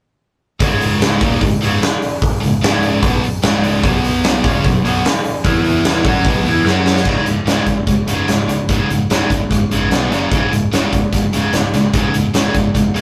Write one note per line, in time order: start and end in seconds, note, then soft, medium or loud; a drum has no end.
0.60 1.17 C#1 medium
0.60 1.21 C#2 loud
0.60 1.21 G#2 medium
0.60 1.22 C#3 loud
0.60 kick loud
0.60 open hi-hat medium
0.81 open hi-hat medium
1.01 snare loud
1.01 open hi-hat medium
1.21 1.40 D#1 medium
1.21 1.41 D#2 medium
1.21 1.42 A#2 medium
1.21 1.42 D#3 medium
1.21 kick loud
1.21 open hi-hat medium
1.41 1.60 C#1 medium
1.41 1.58 C#2 medium
1.41 1.58 G#2 medium
1.41 kick medium
1.41 open hi-hat medium
1.62 1.81 C#1 medium
1.62 1.82 C#2 medium
1.62 1.82 G#2 medium
1.62 1.82 C#3 medium
1.62 open hi-hat medium
1.82 snare loud
1.82 open hi-hat medium
2.02 open hi-hat medium
2.22 kick loud
2.22 open hi-hat medium
2.42 2.61 C#1 medium
2.42 2.59 C#2 medium
2.42 2.60 G#2 medium
2.42 open hi-hat medium
2.62 3.00 C#1 medium
2.62 3.03 C#2 medium
2.62 3.03 G#2 medium
2.62 3.03 C#3 medium
2.62 snare loud
2.62 open hi-hat medium
2.82 open hi-hat medium
3.02 3.21 B1 medium
3.02 3.23 B2 medium
3.02 3.23 F#3 loud
3.02 3.23 B3 loud
3.02 kick loud
3.02 open hi-hat medium
3.23 muted picked electric bass stroke soft
3.23 muted distorted electric guitar stroke medium
3.23 open hi-hat medium
3.42 3.82 C#1 medium
3.42 3.83 C#2 medium
3.42 3.84 G#2 medium
3.42 3.84 C#3 medium
3.42 snare loud
3.42 open hi-hat medium
3.63 open hi-hat medium
3.83 4.40 B1 medium
3.83 4.44 B2 medium
3.83 4.45 F#3 loud
3.83 4.45 B3 loud
3.83 kick medium
3.83 open hi-hat medium
4.04 open hi-hat medium
4.24 snare loud
4.24 open hi-hat medium
4.44 4.63 C#2 medium
4.44 4.64 C#3 medium
4.44 4.65 G#3 loud
4.44 4.65 C#4 loud
4.44 kick loud
4.44 open hi-hat medium
4.64 4.83 B1 medium
4.64 4.82 B2 medium
4.64 4.82 F#3 medium
4.64 kick medium
4.64 open hi-hat medium
4.84 5.03 B1 medium
4.84 5.04 B2 medium
4.84 5.04 F#3 medium
4.84 5.05 B3 loud
4.84 open hi-hat medium
5.05 snare loud
5.05 open hi-hat medium
5.24 open hi-hat medium
5.45 6.02 E2 medium
5.45 6.05 E3 medium
5.45 6.05 B3 loud
5.45 6.05 E4 loud
5.45 kick loud
5.45 open hi-hat medium
5.64 open hi-hat medium
5.84 snare loud
5.84 open hi-hat medium
6.05 6.24 F#2 medium
6.05 6.25 F#3 medium
6.05 6.25 C#4 loud
6.05 6.26 F#4 loud
6.05 kick loud
6.05 open hi-hat medium
6.25 6.44 B1 medium
6.25 6.46 B2 medium
6.25 6.46 F#3 loud
6.25 6.46 B3 loud
6.25 kick loud
6.25 open hi-hat medium
6.45 6.64 E2 medium
6.45 6.67 E3 medium
6.45 6.66 B3 loud
6.45 6.67 E4 medium
6.45 open hi-hat medium
6.64 7.03 F#2 medium
6.64 7.07 F#3 medium
6.64 7.07 C#4 medium
6.64 7.07 F#4 medium
6.64 snare medium
6.86 snare medium
6.96 snare medium
7.05 7.19 C#1 medium
7.05 7.25 C#2 medium
7.05 7.26 G#2 medium
7.05 7.26 C#3 medium
7.05 kick medium
7.05 crash medium
7.25 7.39 C#1 medium
7.25 7.45 C#2 medium
7.25 7.46 G#2 medium
7.25 closed hi-hat medium
7.45 7.59 C#1 medium
7.45 7.66 C#2 medium
7.45 7.66 G#2 medium
7.45 7.67 C#3 medium
7.45 snare loud
7.45 closed hi-hat medium
7.66 7.80 C#1 medium
7.66 7.86 C#2 medium
7.66 7.86 G#2 medium
7.66 kick medium
7.66 closed hi-hat medium
7.87 8.00 C#1 medium
7.87 8.06 C#2 medium
7.87 8.06 G#2 medium
7.87 kick medium
7.87 closed hi-hat medium
8.07 8.20 C#1 medium
8.07 8.27 C#2 medium
8.07 8.27 G#2 medium
8.07 8.28 C#3 medium
8.07 closed hi-hat medium
8.28 8.42 C#1 medium
8.28 8.47 C#2 medium
8.28 8.47 G#2 medium
8.28 snare medium
8.28 closed hi-hat medium
8.48 8.62 C#2 medium
8.48 8.67 C#2 medium
8.48 8.67 G#2 medium
8.48 closed hi-hat medium
8.69 8.82 C#1 medium
8.69 8.88 C#2 medium
8.69 8.89 G#2 medium
8.69 8.89 C#3 loud
8.69 kick medium
8.69 closed hi-hat medium
8.90 9.04 C#1 medium
8.90 9.08 C#2 medium
8.90 9.09 G#2 medium
8.90 closed hi-hat medium
9.10 9.24 C#1 medium
9.10 9.29 C#2 medium
9.10 9.29 G#2 loud
9.10 9.30 C#3 medium
9.10 snare loud
9.10 closed hi-hat medium
9.30 9.43 C#1 medium
9.30 9.49 C#2 medium
9.30 9.49 G#2 medium
9.30 kick medium
9.30 closed hi-hat medium
9.50 9.63 C#1 medium
9.50 9.68 C#2 medium
9.50 9.69 G#2 medium
9.50 kick medium
9.50 closed hi-hat medium
9.71 9.92 G#1 medium
9.71 9.90 C#2 medium
9.71 9.90 G#2 medium
9.71 9.91 C#3 medium
9.71 closed hi-hat medium
9.91 10.12 B1 medium
9.91 10.10 B2 medium
9.91 10.10 F#3 medium
9.91 10.11 B3 medium
9.91 snare medium
9.91 closed hi-hat medium
10.10 10.25 F#1 medium
10.10 10.30 F#2 medium
10.10 10.30 C#3 loud
10.10 10.31 F#3 medium
10.10 snare soft
10.10 closed hi-hat medium
10.31 10.44 C#1 medium
10.31 10.51 C#2 medium
10.31 10.51 G#2 medium
10.31 10.51 C#3 loud
10.31 kick loud
10.31 closed hi-hat medium
10.52 10.65 C#1 medium
10.52 10.70 C#2 medium
10.52 10.70 G#2 medium
10.52 closed hi-hat medium
10.73 10.85 C#1 medium
10.73 10.92 C#2 medium
10.73 10.92 G#2 medium
10.73 10.92 C#3 medium
10.73 snare loud
10.73 closed hi-hat medium
10.93 11.06 C#1 medium
10.93 11.11 C#2 medium
10.93 11.11 G#2 medium
10.93 kick medium
10.93 closed hi-hat medium
11.13 11.26 C#1 medium
11.13 11.32 C#2 medium
11.13 11.32 G#2 medium
11.13 kick medium
11.13 closed hi-hat medium
11.33 11.46 C#1 medium
11.33 11.52 C#2 medium
11.33 11.52 G#2 medium
11.33 11.52 C#3 medium
11.33 closed hi-hat medium
11.53 11.66 C#1 medium
11.53 11.72 C#2 medium
11.53 11.72 G#2 medium
11.53 snare loud
11.53 closed hi-hat medium
11.73 11.86 C#2 medium
11.73 11.92 C#2 medium
11.73 11.92 G#2 medium
11.73 snare soft
11.73 closed hi-hat medium
11.93 12.07 C#1 medium
11.93 12.13 C#2 medium
11.93 12.13 G#2 medium
11.93 12.13 C#3 medium
11.93 kick medium
11.93 closed hi-hat medium
12.14 12.28 C#1 medium
12.14 12.32 C#2 medium
12.14 12.33 G#2 medium
12.14 closed hi-hat medium
12.34 12.47 C#1 medium
12.34 12.52 C#2 medium
12.34 12.52 G#2 medium
12.34 12.54 C#3 medium
12.34 snare loud
12.34 closed hi-hat medium
12.53 12.68 C#1 medium
12.53 12.73 C#2 medium
12.53 12.72 G#2 medium
12.53 kick medium
12.53 closed hi-hat medium
12.75 12.88 C#1 medium
12.75 12.93 C#2 medium
12.75 12.93 G#2 medium
12.75 kick medium
12.75 closed hi-hat medium
12.95 13.01 D#1 medium
12.95 13.01 C#2 medium
12.95 13.01 G#2 medium
12.95 13.01 C#3 medium
12.95 closed hi-hat medium